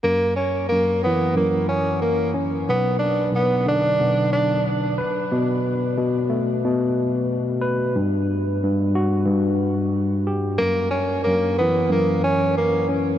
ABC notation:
X:1
M:4/4
L:1/8
Q:"Swing 16ths" 1/4=91
K:F#phr
V:1 name="Tenor saxophone"
^A, C A, B, A, C A, z | B, D B, D2 D z2 | z8 | z8 |
^A, C A, B, A, C A, z |]
V:2 name="Tine electric piano" clef=bass
F,,2 F,, E, F,,3 C | B,,,2 B,,, D, B,,,3 B | B,,2 B,, A, B,,3 B | G,,2 G,, F G,,3 G |
F,,2 F,, E, F,,3 C |]